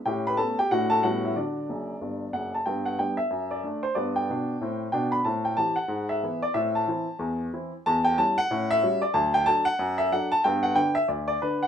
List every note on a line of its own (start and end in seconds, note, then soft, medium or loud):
0.06 0.33 A2 medium
0.06 0.26 C#4 soft
0.06 0.25 G4 medium
0.06 0.25 G5 medium
0.27 0.38 B4 medium
0.27 0.39 B5 medium
0.37 0.56 A3 soft
0.37 0.56 B3 soft
0.37 0.56 C#4 soft
0.37 0.57 A4 medium
0.37 0.58 A5 medium
0.59 0.70 G4 medium
0.59 0.71 G5 loud
0.71 0.99 A2 medium
0.71 0.89 A3 soft
0.71 0.89 D4 soft
0.71 0.90 F#4 medium
0.71 0.91 F#5 medium
0.90 1.02 A4 medium
0.90 1.02 A5 loud
1.03 1.31 A2 medium
1.03 1.21 G3 soft
1.03 1.22 B3 soft
1.03 1.23 C#4 soft
1.03 1.22 F#4 medium
1.03 1.23 F#5 medium
1.25 1.36 E4 soft
1.25 1.36 E5 medium
1.36 1.63 D3 medium
1.36 2.50 D4 soft
1.36 1.56 F#4 soft
1.36 2.53 D5 medium
1.69 1.93 F#1 soft
1.69 1.93 F#2 soft
2.01 2.25 G1 soft
2.01 2.25 G2 soft
2.33 2.57 F#1 soft
2.33 2.57 F#2 soft
2.33 2.53 F#5 medium
2.54 2.66 A5 medium
2.66 2.93 G2 medium
2.66 2.85 B3 soft
2.66 2.85 G5 medium
2.86 2.98 F#5 medium
2.99 3.16 G3 soft
2.99 3.17 B3 soft
2.99 3.17 D4 soft
2.99 3.18 G5 medium
3.17 3.50 E5 medium
3.30 3.58 F#2 medium
3.51 3.83 D5 medium
3.64 3.81 A3 soft
3.64 3.82 D4 soft
3.83 3.95 C5 medium
3.95 4.21 G2 medium
3.95 4.22 B3 medium
3.95 4.15 D5 medium
4.16 4.80 G5 medium
4.30 4.55 B2 medium
4.30 4.55 D4 medium
4.61 4.87 A2 medium
4.61 4.88 C4 medium
4.92 5.19 B2 medium
4.92 5.19 D4 medium
4.92 5.12 G5 medium
5.12 5.24 B5 medium
5.25 5.53 A2 medium
5.25 5.44 C4 soft
5.25 5.45 A5 medium
5.45 5.57 G5 medium
5.57 5.75 E3 soft
5.57 5.75 C4 soft
5.57 5.76 G4 soft
5.57 5.77 A5 medium
5.76 6.09 F#5 medium
5.88 6.16 G#2 medium
6.09 6.42 E5 medium
6.23 6.41 E3 soft
6.23 6.41 B3 soft
6.23 6.41 E4 soft
6.42 6.55 D5 medium
6.54 6.82 A2 medium
6.54 6.74 C4 soft
6.54 6.74 E5 medium
6.75 7.40 A5 medium
6.88 7.05 E3 soft
6.88 7.06 C4 medium
6.88 7.06 E4 soft
7.19 7.47 E2 medium
7.53 7.71 E3 soft
7.53 7.71 C4 soft
7.53 7.71 E4 medium
7.86 8.13 E2 medium
7.86 8.05 A5 loud
8.05 8.17 G5 loud
8.18 8.36 G3 soft
8.18 8.36 C#4 soft
8.18 8.37 E4 soft
8.18 8.37 A5 loud
8.38 8.70 F#5 loud
8.51 8.78 A2 medium
8.51 8.70 C#4 soft
8.71 9.02 E5 loud
8.83 9.01 G3 medium
8.83 9.01 C#4 medium
8.83 9.01 F#4 medium
9.02 9.14 D5 medium
9.14 9.42 D2 medium
9.14 9.33 F#3 soft
9.14 9.34 A5 loud
9.34 9.46 G5 loud
9.46 9.64 F#3 soft
9.46 9.64 D4 medium
9.46 9.65 A4 medium
9.46 9.66 A5 loud
9.65 9.98 F#5 loud
9.79 10.06 F#2 medium
9.98 10.11 E5 loud
10.12 10.30 F#3 soft
10.12 10.30 D4 soft
10.12 10.31 A4 medium
10.12 10.32 F#5 medium
10.32 10.44 A5 loud
10.44 10.72 G2 medium
10.44 10.64 B3 medium
10.44 10.64 G5 loud
10.63 10.76 F#5 medium
10.75 10.94 D3 medium
10.75 10.94 D4 medium
10.75 10.94 B4 medium
10.75 10.96 G5 loud
10.95 11.08 E5 loud
11.08 11.36 D2 medium
11.08 11.26 D5 medium
11.28 11.41 D5 loud
11.42 11.60 D3 soft
11.42 11.60 D4 soft
11.42 11.61 B4 medium
11.63 11.68 F#5 medium